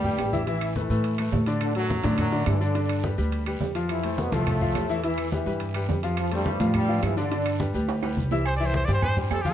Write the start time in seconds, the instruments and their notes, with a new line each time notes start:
Already playing: upright bass D2, trombone section G2 G3
0.04 grand piano G3 G4 G5, high conga, low conga, maracas
0.18 upright bass A1, high conga, high timbale, low timbale, short guiro, claves, maracas
0.32 grand piano E3 E4 E5, high conga, short guiro, maracas
0.47 grand piano E3 E4 E5, trombone section E3 E4, high conga, high timbale, long guiro, maracas
0.61 high conga, high timbale, claves, maracas
0.76 trombone section E3 E4, grand piano A3 A4 B4, high conga, low timbale, short guiro, maracas
0.90 upright bass A2, grand piano A3 A4 B4, high conga, short guiro, maracas
1.04 high conga, high timbale, long guiro, maracas
1.18 grand piano A3 A4 B4, high conga, high timbale, claves, maracas
1.32 upright bass A2, high conga, low timbale, short guiro, maracas
1.46 grand piano D3 D4 D5, high conga, high timbale, short guiro, maracas
1.61 trombone section D3 D4, high conga, high timbale, long guiro, claves, maracas
1.75 trombone section F#2 F#3, grand piano F#3 F#4 A4, high conga, high timbale, maracas
1.90 high conga, low timbale, short guiro, maracas
2.04 upright bass A2, grand piano D3 D4 D5, high conga, high timbale, short guiro, maracas
2.18 trombone section F#2 F#3, high conga, low conga, high timbale, long guiro, claves, maracas
2.32 grand piano D3 D4 D5, high conga, maracas
2.46 upright bass G2, trombone section E3 E4, high timbale, low timbale, short guiro, claves, maracas
2.61 grand piano D3 D4 D5, trombone section D3 D4, short guiro, maracas
2.75 grand piano D3 D4 D5, high conga, high timbale, long guiro, maracas
2.89 high conga, high timbale, claves, maracas
3.03 grand piano G3 G4 B4, high conga, low timbale, short guiro, maracas
3.18 upright bass D2, grand piano G3 G4 B4, high conga, short guiro, maracas
3.32 high conga, high timbale, long guiro, maracas
3.46 grand piano G3 G4 B4, high conga, high timbale, claves, maracas
3.60 upright bass F2, high conga, low timbale, short guiro, maracas
3.75 grand piano F3 F4 F5, high conga, high timbale, short guiro, maracas
3.89 trombone section E3 E4, high conga, high timbale, long guiro, claves, maracas
4.03 grand piano A3 A4 C5, high conga, high timbale, maracas
4.18 trombone section B2 B3, high conga, low timbale, short guiro, maracas
4.32 upright bass C2, trombone section A2 A3, grand piano F3 F4 F5, high conga, high timbale, short guiro, maracas
4.46 high conga, low conga, high timbale, long guiro, claves, maracas
4.61 grand piano F3 F4 F5, high conga, low conga, maracas
4.74 upright bass E2, high conga, high timbale, low timbale, short guiro, claves, maracas
4.89 grand piano E3 E4 E5, short guiro, maracas
5.03 grand piano E3 E4 E5, trombone section E3 E4, high conga, high timbale, long guiro, maracas
5.18 high conga, high timbale, claves, maracas
5.32 trombone section E3 E4, grand piano G3 G4 B4, high conga, low timbale, short guiro, maracas
5.46 upright bass G2, grand piano G3 G4 B4, high conga, short guiro, maracas
5.60 high conga, high timbale, long guiro, maracas
5.74 grand piano G3 G4 B4, high conga, high timbale, claves, maracas
5.89 upright bass F2, high conga, low timbale, short guiro, maracas
6.03 grand piano F3 F4 F5, high conga, high timbale, short guiro, maracas
6.17 trombone section F3 F4, high conga, high timbale, long guiro, claves, maracas
6.31 trombone section G2 G3, grand piano A3 A4 C5, high conga, high timbale, maracas
6.46 high conga, low timbale, short guiro, maracas
6.60 upright bass A2, grand piano F3 F4 F5, high conga, high timbale, short guiro, maracas
6.74 trombone section G2 G3, high conga, low conga, high timbale, long guiro, claves, maracas
6.89 grand piano F3 F4 F5, high conga, maracas
7.02 upright bass G2, trombone section E3 E4, high conga, high timbale, low timbale, short guiro, claves, maracas
7.17 grand piano D3 D4 D5, trombone section D3 D4, short guiro, maracas
7.32 grand piano D3 D4 D5, high conga, high timbale, long guiro, maracas
7.46 high conga, high timbale, claves, maracas
7.60 grand piano G3 G4 B4, high conga, low timbale, short guiro, maracas
7.74 upright bass D2, grand piano G3 G4 B4, high conga, short guiro, maracas
7.89 high conga, high timbale, long guiro, maracas
8.03 grand piano G3 G4 B4, high conga, high timbale, claves, maracas
8.17 upright bass C2, high conga, short guiro, maracas
8.31 grand piano E3 E4 E5, high conga, low timbale, short guiro, maracas
8.45 trumpet C5, high conga, low agogo, long guiro, claves, maracas
8.56 grand piano E3, trumpet D5, high conga, low agogo, maracas
8.60 grand piano E4 E5
8.66 trumpet C5
8.74 trumpet C5, high conga, low timbale, short guiro, maracas
8.85 upright bass G2, grand piano G3 G4 C5, trumpet D5, high conga, low agogo, short guiro, maracas
8.94 trumpet C5
9.02 trumpet C5, high conga, low conga, low agogo, long guiro, claves, maracas
9.16 grand piano G3 G4 C5, high conga, low conga, maracas
9.31 upright bass F2, trumpet A4, high conga, low timbale, low agogo, short guiro, claves, maracas
9.42 grand piano F3 F4, trumpet G4, high conga, short guiro, maracas
9.46 grand piano F5